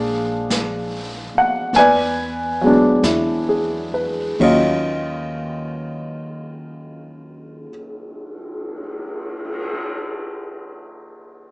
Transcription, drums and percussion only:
0.50 brush sweep soft
0.50 snare soft
0.50 hi-hat pedal medium
1.74 brush sweep soft
1.74 snare soft
3.03 brush sweep soft
3.03 snare soft
3.03 hi-hat pedal medium
4.40 kick soft
4.40 ride soft
5.37 cymbal swell soft

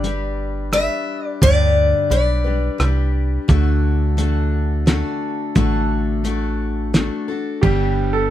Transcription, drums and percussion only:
0.04 closed hi-hat medium
0.73 cross-stick medium
0.73 closed hi-hat medium
1.42 kick medium
1.42 closed hi-hat medium
2.11 closed hi-hat medium
2.80 cross-stick medium
2.80 closed hi-hat medium
3.49 kick loud
3.49 closed hi-hat medium
4.18 closed hi-hat medium
4.87 snare medium
4.87 closed hi-hat medium
5.56 kick loud
5.56 closed hi-hat medium
6.25 closed hi-hat medium
6.94 snare medium
6.94 closed hi-hat medium
7.63 kick medium
7.63 ride medium

